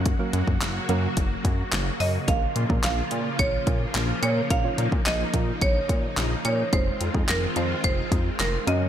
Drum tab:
HH |x-x-x-x-x-x-x-o-|x-x-x-x-x-x-x-x-|x-x-x-x-x-x-x-x-|x-x-x-x-x-x-x-x-|
CP |----x-------x---|----x-------x---|----x-------x---|----x-------x---|
SD |----o-------o---|----o-------o---|----o-------o---|----o-------o---|
BD |o--o----o-o-----|o--o----o-o-----|o--o--o-o-o-----|o--o----o-o-----|